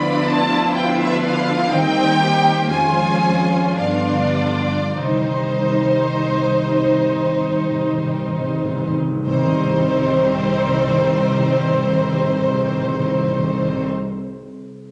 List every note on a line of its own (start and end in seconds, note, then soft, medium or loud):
0.00 1.66 D2 medium
0.00 1.73 D3 medium
0.00 1.66 F3 medium
0.00 0.71 B3 medium
0.00 1.66 B3 medium
0.00 1.74 B3 medium
0.00 0.73 D4 medium
0.00 1.74 D4 soft
0.00 1.70 E4 medium
0.00 1.45 F4 medium
0.00 1.70 F4 medium
0.00 0.96 B4 medium
0.00 0.73 D5 medium
0.00 0.22 F5 medium
0.00 0.25 B5 medium
0.23 0.71 F5 medium
0.23 0.73 A5 loud
0.48 1.74 F6 medium
0.72 1.68 D4 medium
0.72 1.68 F4 medium
0.72 1.70 B4 medium
0.72 1.21 F5 medium
0.72 0.98 G5 medium
0.97 1.74 B4 medium
0.97 1.22 E5 loud
1.22 1.74 F5 medium
1.22 1.70 F5 loud
1.46 1.74 F4 medium
1.70 2.68 D#2 medium
1.70 2.73 D#3 medium
1.70 2.67 G3 medium
1.70 2.19 C4 medium
1.70 2.69 C4 medium
1.70 2.18 D#4 medium
1.70 2.69 D#4 medium
1.70 2.66 G4 medium
1.70 3.72 C5 medium
1.70 2.69 G5 loud
1.95 2.73 D#4 medium
2.18 2.69 A#3 medium
2.18 2.73 C4 medium
2.18 2.68 G4 medium
2.45 2.73 G4 medium
2.67 3.76 F2 medium
2.67 3.77 F3 medium
2.67 5.03 F3 medium
2.67 3.77 G#3 medium
2.67 3.74 C#4 medium
2.67 3.75 C#4 medium
2.67 3.74 F4 medium
2.67 3.76 F4 medium
2.67 3.74 G#5 loud
2.95 3.81 G#3 medium
3.23 5.03 F4 medium
3.49 3.81 C#5 medium
3.76 5.02 G2 medium
3.76 4.95 G2 medium
3.76 4.80 D3 medium
3.76 4.95 G3 medium
3.76 4.80 B3 medium
3.76 4.96 D4 medium
3.76 4.97 D4 medium
3.76 4.94 F4 medium
3.76 4.97 D5 medium
3.76 4.34 F5 medium
4.06 5.02 D3 soft
4.34 5.61 G3 soft
4.34 4.97 D5 medium
4.65 5.02 D4 soft
4.96 8.96 C2 medium
4.96 8.87 C3 medium
4.96 8.73 D#3 medium
4.96 8.92 G3 medium
4.96 8.73 C4 medium
4.96 8.92 D#4 medium
4.96 8.49 D#4 medium
4.96 8.96 D#4 medium
4.96 8.49 C5 medium
4.96 8.92 C5 medium
5.07 5.16 C3 soft
5.17 5.25 C3 soft
5.29 9.19 C4 soft
5.37 5.45 C3 soft
5.56 5.65 C3 soft
5.62 5.75 C3 soft
5.62 9.33 G3 soft
5.76 5.85 C3 soft
5.86 5.95 C3 soft
5.95 6.06 C3 soft
5.95 8.88 D#4 soft
6.07 6.16 C3 soft
6.17 6.26 C3 soft
6.27 6.37 C3 soft
6.27 8.48 C5 soft
6.38 6.47 C3 soft
6.49 6.57 C3 soft
6.59 6.68 C3 medium
6.64 8.09 G4 soft
6.70 6.79 C3 medium
6.81 6.91 C3 medium
6.92 7.01 C3 medium
6.99 7.13 C3 medium
6.99 7.70 D#5 soft
7.14 7.24 C3 medium
7.25 7.35 C3 medium
7.36 7.47 C3 medium
7.36 11.26 C6 soft
7.48 7.58 C3 medium
7.59 7.69 C3 medium
7.70 7.80 C3 medium
7.70 9.61 D#5 soft
7.81 7.91 C3 medium
7.92 8.03 C3 medium
8.04 8.14 C3 medium
8.10 12.00 G4 soft
8.16 8.26 C3 medium
8.27 8.38 C3 medium
8.40 8.51 C3 medium
8.49 8.62 C3 medium
8.49 9.54 C5 soft
8.64 8.75 C3 medium
8.76 8.86 C3 loud
8.88 8.98 C3 loud
8.88 9.47 D#4 soft
8.99 9.10 C3 loud
9.11 9.22 C3 loud
9.26 13.85 C2 medium
9.26 13.86 C2 medium
9.26 9.33 C3 medium
9.26 13.86 C3 medium
9.26 13.85 D#3 medium
9.26 13.86 G3 medium
9.26 13.86 C4 medium
9.26 13.86 D#4 medium
9.26 13.86 C5 loud
9.26 13.86 C5 medium
9.33 9.39 C3 medium
9.33 13.93 G3 medium
9.39 9.46 C3 medium
9.39 13.99 C4 medium
9.46 9.52 C3 medium
9.46 14.07 D#4 medium
9.52 9.59 C3 medium
9.52 14.14 C5 medium
9.59 9.65 C3 medium
9.59 14.21 D#5 medium
9.66 9.73 C3 medium
9.73 9.79 C3 medium
9.80 9.86 C3 loud
9.86 9.93 C3 medium
9.93 10.00 C3 medium
10.00 10.07 C3 medium
10.07 10.13 C3 medium
10.13 10.20 C3 medium
10.20 10.26 C3 medium
10.26 10.33 C3 medium
10.33 10.40 C3 medium
10.40 10.46 C3 medium
10.47 10.53 C3 medium
10.53 10.60 C3 medium
10.60 10.67 C3 medium
10.67 10.73 C3 medium
10.73 10.79 C3 medium
10.80 10.86 C3 medium
10.86 10.93 C3 medium
10.93 11.00 C3 medium
11.00 11.07 C3 medium
11.07 11.13 C3 medium
11.13 11.20 C3 medium
11.20 11.27 C3 medium
11.27 11.33 C3 medium
11.33 11.40 C3 medium
11.40 11.47 C3 medium
11.47 11.53 C3 medium
11.53 11.60 C3 medium
11.60 11.66 C3 medium
11.66 11.73 C3 medium
11.73 11.79 C3 medium
11.79 11.86 C3 medium
11.86 11.92 C3 medium
11.92 11.99 C3 medium
11.99 12.06 C3 medium
12.06 12.13 C3 medium
12.13 12.19 C3 medium
12.20 12.26 C3 medium
12.26 12.33 C3 medium
12.33 12.39 C3 medium
12.39 12.46 C3 medium
12.46 12.53 C3 medium
12.53 12.59 C3 medium
12.59 12.66 C3 medium
12.66 12.73 C3 medium
12.73 12.80 C3 medium
12.80 12.86 C3 medium
12.86 12.93 C3 medium
12.93 13.00 C3 medium
13.00 13.06 C3 medium
13.06 13.12 C3 medium
13.12 13.19 C3 medium
13.19 13.26 C3 medium
13.27 13.33 C3 medium
13.33 13.39 C3 medium
13.39 13.45 C3 medium
13.45 13.52 C3 medium
13.52 13.59 C3 medium
13.59 13.65 C3 medium
13.65 13.72 C3 medium
13.72 13.79 C3 medium
13.79 13.86 C3 medium